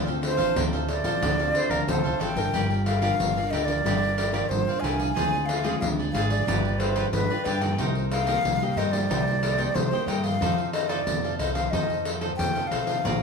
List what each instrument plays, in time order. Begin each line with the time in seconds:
Already playing: upright bass D2, nylon-string guitar D3
0.06 nylon-string guitar C4 F4 A4, cavaquinho A4 C5 F5, pandeiro
0.22 flute C5, muted cavaquinho stroke, pandeiro
0.37 upright bass A1, cavaquinho A4 C5 F5, pandeiro
0.56 upright bass D2, nylon-string guitar A2 C4 F4 A4, cavaquinho D4 A4 C5 F5, pandeiro
0.73 cavaquinho A4 C5 F5, pandeiro
0.89 flute D5, pandeiro
1.04 upright bass A1, nylon-string guitar C4 F4 A4, cavaquinho A4 C5 F5, pandeiro
1.22 upright bass D2, nylon-string guitar D3, cavaquinho D4 A4 C5 F5, pandeiro
1.39 nylon-string guitar C4 F4 A4, cavaquinho A4 C5 F5, pandeiro
1.54 flute C5, muted cavaquinho stroke, pandeiro
1.70 upright bass D2, cavaquinho A4 C5 F5, flute A#4, pandeiro
1.87 upright bass D2, nylon-string guitar A2 C4 F4 A4, flute A4 C5, pandeiro
2.04 upright bass C2, cavaquinho A4 C5 F5, pandeiro
2.19 upright bass A1, cavaquinho D4 A4 C5 F5, flute G5, pandeiro
2.35 upright bass G1, nylon-string guitar D4 F4 A#4, cavaquinho A4 C5 F5, pandeiro
2.53 upright bass G1, nylon-string guitar G3, cavaquinho G4 A#4 D5 F5, pandeiro
2.70 pandeiro
2.86 cavaquinho G4 A#4 D5 F5, flute F5, pandeiro
3.02 nylon-string guitar D4 F4 A#4, cavaquinho G4 A#4 D5 F5, pandeiro
3.19 upright bass G1, nylon-string guitar D3, pandeiro
3.36 nylon-string guitar D4 F4 A#4, cavaquinho A#4 D5 F5, pandeiro
3.50 upright bass D2, cavaquinho G4 A#4 D5 F5, flute D#5, pandeiro
3.65 nylon-string guitar D4 F4 A#4, flute D5, pandeiro
3.84 upright bass G1, nylon-string guitar G3 D4 F4 A#4, cavaquinho G4 A#4 D5 F5, pandeiro
4.03 pandeiro
4.18 cavaquinho G4 A#4 D5 F5, pandeiro
4.32 nylon-string guitar D4 F4 A#4, cavaquinho G4 A#4 D5 F5, pandeiro
4.49 upright bass G1, nylon-string guitar D3, flute C5, pandeiro
4.67 nylon-string guitar D4 F4 A#4, cavaquinho A#4 D5 F5, pandeiro
4.80 upright bass C2, cavaquinho G4, flute G#5
4.84 cavaquinho A#4 D5 F5, pandeiro
4.99 cavaquinho A#4 D5 F5, pandeiro
5.12 upright bass D2, nylon-string guitar D3 G#3 C4, cavaquinho F4 G#4, flute G#5
5.17 nylon-string guitar F4, cavaquinho C5 D5, pandeiro
5.34 pandeiro
5.46 cavaquinho F4 G#4 C5, flute F5, pandeiro
5.50 cavaquinho D5
5.64 nylon-string guitar G#3 C4 F4, cavaquinho F4 G#4 C5 D5, pandeiro
5.80 upright bass D2, nylon-string guitar D3, flute F5, pandeiro
5.99 cavaquinho G#4 C5 D5, pandeiro
6.12 upright bass G#1, nylon-string guitar G#3 C4 F4, cavaquinho F4 G#4 C5, flute F5, pandeiro
6.16 cavaquinho D5
6.30 flute D5, pandeiro
6.47 upright bass G1, nylon-string guitar G3 D4 F4 B4, cavaquinho F4 G4 B4 D5, pandeiro
6.65 pandeiro
6.78 nylon-string guitar D4 F4, cavaquinho F4 G4 B4 D5, flute C5, pandeiro
6.95 cavaquinho F4 G4 B4 D5, pandeiro
7.12 upright bass G1, nylon-string guitar D3, flute B4, pandeiro
7.30 nylon-string guitar D4 F4 B4, cavaquinho G4 B4 D5, pandeiro
7.45 upright bass G2, cavaquinho F4 G4 B4 D5, flute G5, pandeiro
7.61 nylon-string guitar A#3 D#4 G4, cavaquinho G4 B4 D5, pandeiro
7.78 upright bass C2, nylon-string guitar C3, cavaquinho D#4 A#4 C5 D#5, pandeiro
7.95 pandeiro
8.11 cavaquinho D#4 A#4 C5 D#5, flute F5, pandeiro
8.27 nylon-string guitar A#3 D#4 G4, cavaquinho D#4 A#4 C5 D#5, pandeiro
8.44 upright bass C2, nylon-string guitar G3, pandeiro
8.62 nylon-string guitar A#3 D#4 G4, cavaquinho A#4 C5 D#5, pandeiro
8.76 upright bass G2, cavaquinho D#4 A#4 C5 D#5, flute D#5, pandeiro
8.92 nylon-string guitar A#3 D#4 G4, flute D5, pandeiro
9.10 upright bass C2, nylon-string guitar C3 A#3 D#4 G4, cavaquinho D#4 A#4 C5, pandeiro
9.28 pandeiro
9.43 cavaquinho D#4 A#4 C5 D#5, pandeiro
9.57 nylon-string guitar A#3 D#4 G4, cavaquinho D#4 A#4 C5 D#5, pandeiro
9.75 upright bass C2, nylon-string guitar G3, flute C5, pandeiro
9.91 nylon-string guitar A#3 D#4 G4, cavaquinho A#4 C5 D#5, pandeiro
10.07 upright bass G2, cavaquinho D#4 A#4 C5 D#5, flute G5, pandeiro
10.24 cavaquinho A#4 C5 D#5, flute F5, pandeiro
10.40 upright bass F2, nylon-string guitar F3 D#4 A4 C5, cavaquinho D#4 A4 C5 F5, pandeiro
10.58 pandeiro
10.73 cavaquinho D#4 A4 C5 F5, flute D#5, pandeiro
10.88 nylon-string guitar D#4 A4 C5, cavaquinho D#4 A4 C5 F5, flute D5, pandeiro
11.07 upright bass F2, nylon-string guitar C3, pandeiro
11.24 nylon-string guitar D#4 A4 C5, cavaquinho A4 C5 F5, pandeiro
11.38 upright bass C2, cavaquinho D#4 A4 C5 F5, flute D#5, pandeiro
11.53 nylon-string guitar D#4 A4 C5, flute F5, pandeiro
11.70 upright bass F2, nylon-string guitar F3 D#4 A4, cavaquinho D#4 A4, flute D#5, pandeiro
11.74 nylon-string guitar C5, cavaquinho C5 F5
11.90 pandeiro
12.05 cavaquinho D#4 A4 C5 F5, pandeiro
12.21 nylon-string guitar D#4 A4 C5, cavaquinho D#4 A4 C5 F5, pandeiro
12.37 upright bass F2, nylon-string guitar C3, flute G5, pandeiro
12.55 nylon-string guitar D#4 A4 C5, cavaquinho A4 C5 F5, pandeiro
12.67 upright bass B1, cavaquinho D#4, flute F5
12.72 cavaquinho A4 C5 F5, pandeiro
12.87 cavaquinho A4 C5 F5, pandeiro
13.04 upright bass A#1, nylon-string guitar A#3 D4 C5, cavaquinho D5 F5 A#5, pandeiro